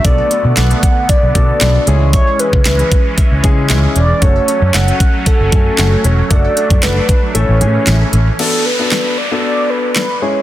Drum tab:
CC |----------------|----------------|----------------|----------------|
HH |x-x-xxx-x-x-x-x-|x-x-xxx-x-x-x-x-|x-x-xxx-x-x-x-x-|x-xxx-x-x-x-x-x-|
CP |----x-------x---|----x-------x---|----x-------x---|----x-------x---|
SD |----o-------o---|----o-------o---|----o-------o---|----o-------o---|
BD |o-----o-o-o-----|o--o--o-o-o-----|o-----o-o-o-----|o--o--o---------|

CC |x---------------|
HH |----------------|
CP |----x-------x---|
SD |----o-------o---|
BD |----------------|